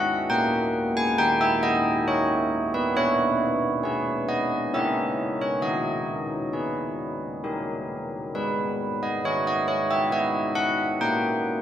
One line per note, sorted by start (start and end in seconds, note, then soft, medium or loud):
0.00 0.26 G#3 medium
0.00 0.27 G#4 soft
0.00 0.30 F#5 medium
0.30 2.93 A#3 medium
0.30 0.95 G5 medium
0.97 1.20 G#5 medium
1.18 2.07 D#4 soft
1.18 1.42 G5 loud
1.41 1.64 E5 medium
1.63 2.06 D#5 medium
2.08 2.93 D#4 soft
2.08 2.72 C#5 medium
2.74 2.97 B4 medium
2.96 4.69 B3 medium
2.96 4.24 C#5 medium
3.83 4.69 G#4 soft
3.83 4.69 B4 medium
4.29 4.71 D#5 medium
4.74 5.60 C#4 soft
4.74 5.59 G#4 soft
4.74 5.59 A#4 soft
4.74 5.38 E5 medium
5.42 5.63 C#5 medium
5.62 7.39 D#4 soft
5.62 7.85 D#5 medium
6.53 7.40 G#4 soft
6.53 7.40 B4 soft
7.44 8.32 D#4 soft
7.44 8.31 G4 soft
7.44 8.31 A#4 soft
8.35 10.99 G#3 soft
8.35 9.00 B4 medium
9.03 9.25 D#5 medium
9.25 10.10 D#4 soft
9.25 9.47 C#5 medium
9.47 9.69 D#5 medium
9.68 9.91 C#5 medium
9.91 10.13 E5 medium
10.11 10.98 D#4 soft
10.11 10.98 B4 soft
10.11 10.56 D#5 medium
10.55 11.00 F#5 medium
11.01 11.62 A#3 soft
11.01 11.62 G5 medium